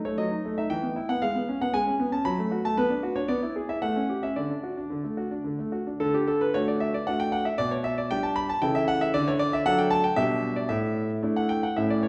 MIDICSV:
0, 0, Header, 1, 2, 480
1, 0, Start_track
1, 0, Key_signature, 2, "major"
1, 0, Tempo, 519481
1, 1132, Time_signature, 3, 2, 24, 8
1, 3048, Tempo, 539568
1, 5928, Tempo, 519931
1, 9288, Tempo, 532387
1, 11008, End_track
2, 0, Start_track
2, 0, Title_t, "Grand piano"
2, 0, Program_c, 0, 0
2, 46, Note_on_c, 0, 73, 67
2, 47, Note_on_c, 0, 57, 46
2, 164, Note_on_c, 0, 75, 72
2, 168, Note_on_c, 0, 54, 53
2, 169, Note_off_c, 0, 73, 0
2, 175, Note_off_c, 0, 57, 0
2, 287, Note_off_c, 0, 54, 0
2, 288, Note_on_c, 0, 63, 42
2, 414, Note_on_c, 0, 57, 44
2, 416, Note_off_c, 0, 63, 0
2, 493, Note_off_c, 0, 75, 0
2, 533, Note_on_c, 0, 63, 44
2, 533, Note_on_c, 0, 76, 62
2, 539, Note_off_c, 0, 57, 0
2, 646, Note_on_c, 0, 79, 71
2, 652, Note_off_c, 0, 76, 0
2, 652, Note_on_c, 0, 52, 56
2, 653, Note_off_c, 0, 63, 0
2, 765, Note_on_c, 0, 59, 44
2, 768, Note_off_c, 0, 52, 0
2, 888, Note_on_c, 0, 64, 52
2, 894, Note_off_c, 0, 59, 0
2, 972, Note_off_c, 0, 79, 0
2, 1008, Note_on_c, 0, 78, 78
2, 1010, Note_on_c, 0, 59, 48
2, 1016, Note_off_c, 0, 64, 0
2, 1125, Note_on_c, 0, 77, 80
2, 1130, Note_off_c, 0, 78, 0
2, 1130, Note_on_c, 0, 56, 56
2, 1131, Note_off_c, 0, 59, 0
2, 1247, Note_off_c, 0, 56, 0
2, 1251, Note_on_c, 0, 59, 44
2, 1373, Note_on_c, 0, 61, 48
2, 1377, Note_off_c, 0, 59, 0
2, 1488, Note_off_c, 0, 77, 0
2, 1489, Note_on_c, 0, 59, 47
2, 1493, Note_on_c, 0, 78, 77
2, 1498, Note_off_c, 0, 61, 0
2, 1604, Note_on_c, 0, 80, 92
2, 1608, Note_on_c, 0, 56, 58
2, 1611, Note_off_c, 0, 78, 0
2, 1615, Note_off_c, 0, 59, 0
2, 1725, Note_off_c, 0, 56, 0
2, 1726, Note_on_c, 0, 61, 48
2, 1844, Note_on_c, 0, 59, 55
2, 1853, Note_off_c, 0, 61, 0
2, 1928, Note_off_c, 0, 80, 0
2, 1960, Note_on_c, 0, 61, 44
2, 1962, Note_on_c, 0, 81, 70
2, 1971, Note_off_c, 0, 59, 0
2, 2079, Note_on_c, 0, 83, 93
2, 2083, Note_off_c, 0, 61, 0
2, 2084, Note_off_c, 0, 81, 0
2, 2084, Note_on_c, 0, 54, 68
2, 2201, Note_off_c, 0, 54, 0
2, 2206, Note_on_c, 0, 57, 52
2, 2324, Note_on_c, 0, 66, 50
2, 2332, Note_off_c, 0, 57, 0
2, 2442, Note_off_c, 0, 83, 0
2, 2446, Note_on_c, 0, 57, 55
2, 2449, Note_on_c, 0, 81, 87
2, 2451, Note_off_c, 0, 66, 0
2, 2563, Note_on_c, 0, 71, 85
2, 2566, Note_off_c, 0, 57, 0
2, 2567, Note_off_c, 0, 81, 0
2, 2568, Note_on_c, 0, 59, 67
2, 2680, Note_on_c, 0, 62, 48
2, 2683, Note_off_c, 0, 59, 0
2, 2801, Note_on_c, 0, 66, 57
2, 2809, Note_off_c, 0, 62, 0
2, 2915, Note_on_c, 0, 62, 48
2, 2916, Note_on_c, 0, 73, 75
2, 2925, Note_off_c, 0, 71, 0
2, 2930, Note_off_c, 0, 66, 0
2, 3034, Note_on_c, 0, 74, 79
2, 3037, Note_on_c, 0, 59, 67
2, 3042, Note_off_c, 0, 62, 0
2, 3042, Note_off_c, 0, 73, 0
2, 3156, Note_off_c, 0, 59, 0
2, 3162, Note_on_c, 0, 64, 47
2, 3251, Note_off_c, 0, 74, 0
2, 3279, Note_on_c, 0, 68, 52
2, 3288, Note_off_c, 0, 64, 0
2, 3395, Note_on_c, 0, 64, 45
2, 3397, Note_on_c, 0, 76, 68
2, 3405, Note_off_c, 0, 68, 0
2, 3511, Note_on_c, 0, 78, 75
2, 3516, Note_off_c, 0, 64, 0
2, 3516, Note_on_c, 0, 57, 54
2, 3518, Note_off_c, 0, 76, 0
2, 3633, Note_off_c, 0, 57, 0
2, 3638, Note_on_c, 0, 61, 49
2, 3756, Note_on_c, 0, 67, 49
2, 3763, Note_off_c, 0, 61, 0
2, 3873, Note_off_c, 0, 78, 0
2, 3875, Note_on_c, 0, 76, 66
2, 3876, Note_on_c, 0, 61, 47
2, 3883, Note_off_c, 0, 67, 0
2, 3993, Note_on_c, 0, 74, 61
2, 3997, Note_off_c, 0, 76, 0
2, 3997, Note_on_c, 0, 50, 53
2, 3998, Note_off_c, 0, 61, 0
2, 4116, Note_off_c, 0, 50, 0
2, 4118, Note_on_c, 0, 62, 42
2, 4237, Note_on_c, 0, 66, 45
2, 4246, Note_off_c, 0, 62, 0
2, 4357, Note_on_c, 0, 62, 38
2, 4365, Note_off_c, 0, 66, 0
2, 4474, Note_on_c, 0, 50, 47
2, 4486, Note_off_c, 0, 62, 0
2, 4594, Note_off_c, 0, 50, 0
2, 4595, Note_on_c, 0, 57, 41
2, 4715, Note_on_c, 0, 66, 46
2, 4725, Note_off_c, 0, 57, 0
2, 4838, Note_on_c, 0, 62, 39
2, 4845, Note_off_c, 0, 66, 0
2, 4956, Note_on_c, 0, 50, 45
2, 4968, Note_off_c, 0, 62, 0
2, 5079, Note_off_c, 0, 50, 0
2, 5086, Note_on_c, 0, 57, 42
2, 5203, Note_on_c, 0, 66, 45
2, 5208, Note_off_c, 0, 74, 0
2, 5216, Note_off_c, 0, 57, 0
2, 5333, Note_on_c, 0, 62, 39
2, 5336, Note_off_c, 0, 66, 0
2, 5451, Note_on_c, 0, 69, 81
2, 5454, Note_off_c, 0, 62, 0
2, 5454, Note_on_c, 0, 50, 62
2, 5572, Note_off_c, 0, 69, 0
2, 5578, Note_on_c, 0, 67, 69
2, 5694, Note_off_c, 0, 67, 0
2, 5696, Note_on_c, 0, 69, 74
2, 5812, Note_off_c, 0, 69, 0
2, 5816, Note_on_c, 0, 71, 74
2, 5913, Note_off_c, 0, 50, 0
2, 5931, Note_off_c, 0, 71, 0
2, 5934, Note_on_c, 0, 73, 84
2, 5935, Note_on_c, 0, 57, 48
2, 5942, Note_on_c, 0, 66, 53
2, 5943, Note_on_c, 0, 62, 46
2, 6052, Note_off_c, 0, 73, 0
2, 6060, Note_on_c, 0, 74, 67
2, 6174, Note_on_c, 0, 76, 76
2, 6175, Note_off_c, 0, 74, 0
2, 6281, Note_off_c, 0, 57, 0
2, 6285, Note_off_c, 0, 66, 0
2, 6286, Note_off_c, 0, 62, 0
2, 6293, Note_off_c, 0, 76, 0
2, 6304, Note_on_c, 0, 74, 66
2, 6418, Note_off_c, 0, 74, 0
2, 6419, Note_on_c, 0, 78, 76
2, 6424, Note_on_c, 0, 57, 40
2, 6428, Note_on_c, 0, 62, 42
2, 6430, Note_on_c, 0, 66, 44
2, 6536, Note_off_c, 0, 78, 0
2, 6538, Note_on_c, 0, 79, 82
2, 6653, Note_on_c, 0, 78, 83
2, 6656, Note_off_c, 0, 79, 0
2, 6768, Note_off_c, 0, 57, 0
2, 6770, Note_off_c, 0, 62, 0
2, 6772, Note_off_c, 0, 66, 0
2, 6773, Note_on_c, 0, 76, 75
2, 6774, Note_off_c, 0, 78, 0
2, 6892, Note_on_c, 0, 74, 93
2, 6895, Note_off_c, 0, 76, 0
2, 6895, Note_on_c, 0, 47, 60
2, 7014, Note_off_c, 0, 74, 0
2, 7015, Note_on_c, 0, 73, 74
2, 7131, Note_on_c, 0, 76, 84
2, 7136, Note_off_c, 0, 73, 0
2, 7254, Note_off_c, 0, 76, 0
2, 7259, Note_on_c, 0, 74, 70
2, 7363, Note_off_c, 0, 47, 0
2, 7377, Note_on_c, 0, 79, 92
2, 7378, Note_off_c, 0, 74, 0
2, 7380, Note_on_c, 0, 55, 52
2, 7383, Note_on_c, 0, 62, 50
2, 7390, Note_on_c, 0, 67, 58
2, 7493, Note_on_c, 0, 81, 77
2, 7497, Note_off_c, 0, 79, 0
2, 7609, Note_on_c, 0, 83, 98
2, 7614, Note_off_c, 0, 81, 0
2, 7722, Note_off_c, 0, 55, 0
2, 7725, Note_off_c, 0, 62, 0
2, 7729, Note_off_c, 0, 67, 0
2, 7732, Note_off_c, 0, 83, 0
2, 7737, Note_on_c, 0, 81, 85
2, 7848, Note_on_c, 0, 52, 46
2, 7849, Note_on_c, 0, 79, 84
2, 7853, Note_on_c, 0, 49, 58
2, 7855, Note_off_c, 0, 81, 0
2, 7857, Note_on_c, 0, 64, 50
2, 7862, Note_on_c, 0, 69, 49
2, 7970, Note_on_c, 0, 76, 89
2, 7971, Note_off_c, 0, 79, 0
2, 8090, Note_on_c, 0, 78, 98
2, 8092, Note_off_c, 0, 76, 0
2, 8211, Note_off_c, 0, 78, 0
2, 8213, Note_on_c, 0, 76, 90
2, 8293, Note_off_c, 0, 52, 0
2, 8297, Note_off_c, 0, 64, 0
2, 8300, Note_off_c, 0, 69, 0
2, 8318, Note_off_c, 0, 49, 0
2, 8330, Note_on_c, 0, 74, 95
2, 8333, Note_off_c, 0, 76, 0
2, 8334, Note_on_c, 0, 50, 79
2, 8451, Note_off_c, 0, 74, 0
2, 8458, Note_on_c, 0, 73, 85
2, 8566, Note_on_c, 0, 74, 96
2, 8574, Note_off_c, 0, 73, 0
2, 8688, Note_off_c, 0, 74, 0
2, 8694, Note_on_c, 0, 76, 94
2, 8796, Note_off_c, 0, 50, 0
2, 8810, Note_on_c, 0, 78, 110
2, 8811, Note_off_c, 0, 76, 0
2, 8814, Note_on_c, 0, 54, 60
2, 8816, Note_on_c, 0, 62, 60
2, 8820, Note_on_c, 0, 69, 68
2, 8928, Note_off_c, 0, 78, 0
2, 8928, Note_on_c, 0, 79, 83
2, 9038, Note_on_c, 0, 81, 103
2, 9047, Note_off_c, 0, 79, 0
2, 9156, Note_off_c, 0, 54, 0
2, 9157, Note_off_c, 0, 62, 0
2, 9160, Note_off_c, 0, 69, 0
2, 9162, Note_off_c, 0, 81, 0
2, 9162, Note_on_c, 0, 79, 85
2, 9277, Note_on_c, 0, 76, 105
2, 9280, Note_on_c, 0, 47, 68
2, 9281, Note_on_c, 0, 55, 56
2, 9284, Note_off_c, 0, 79, 0
2, 9284, Note_on_c, 0, 62, 54
2, 9291, Note_on_c, 0, 67, 48
2, 9636, Note_off_c, 0, 76, 0
2, 9636, Note_on_c, 0, 74, 72
2, 9721, Note_off_c, 0, 55, 0
2, 9722, Note_off_c, 0, 62, 0
2, 9726, Note_off_c, 0, 67, 0
2, 9742, Note_off_c, 0, 47, 0
2, 9750, Note_on_c, 0, 76, 88
2, 9753, Note_on_c, 0, 45, 70
2, 9757, Note_off_c, 0, 74, 0
2, 10113, Note_off_c, 0, 76, 0
2, 10221, Note_off_c, 0, 45, 0
2, 10235, Note_on_c, 0, 57, 55
2, 10237, Note_on_c, 0, 62, 51
2, 10244, Note_on_c, 0, 64, 53
2, 10360, Note_on_c, 0, 78, 72
2, 10474, Note_on_c, 0, 79, 80
2, 10481, Note_off_c, 0, 78, 0
2, 10585, Note_off_c, 0, 57, 0
2, 10586, Note_off_c, 0, 62, 0
2, 10591, Note_off_c, 0, 64, 0
2, 10598, Note_off_c, 0, 79, 0
2, 10601, Note_on_c, 0, 78, 69
2, 10720, Note_on_c, 0, 76, 77
2, 10721, Note_on_c, 0, 57, 41
2, 10722, Note_on_c, 0, 45, 60
2, 10723, Note_off_c, 0, 78, 0
2, 10728, Note_on_c, 0, 61, 40
2, 10733, Note_on_c, 0, 64, 42
2, 10843, Note_off_c, 0, 76, 0
2, 10845, Note_on_c, 0, 74, 71
2, 10959, Note_on_c, 0, 73, 73
2, 10966, Note_off_c, 0, 74, 0
2, 11008, Note_off_c, 0, 45, 0
2, 11008, Note_off_c, 0, 57, 0
2, 11008, Note_off_c, 0, 61, 0
2, 11008, Note_off_c, 0, 64, 0
2, 11008, Note_off_c, 0, 73, 0
2, 11008, End_track
0, 0, End_of_file